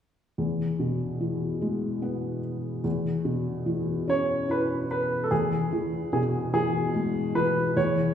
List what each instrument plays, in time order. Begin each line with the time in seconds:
0.38 felt piano E2
0.79 felt piano B2
1.21 felt piano E3
1.61 felt piano G#3
2.02 felt piano B3
2.84 felt piano E2
3.25 felt piano B2
3.66 felt piano E3
4.07 felt piano C#4, grand piano C#5
4.49 felt piano E4, grand piano B4
4.91 grand piano B4
5.24 grand piano A4
5.31 felt piano E2, grand piano G#4
5.73 felt piano E3
6.13 felt piano B2, grand piano G#4
6.53 felt piano E3, grand piano G#4
6.94 felt piano G#3
7.35 felt piano E3, grand piano B4
7.76 felt piano E2, grand piano C#5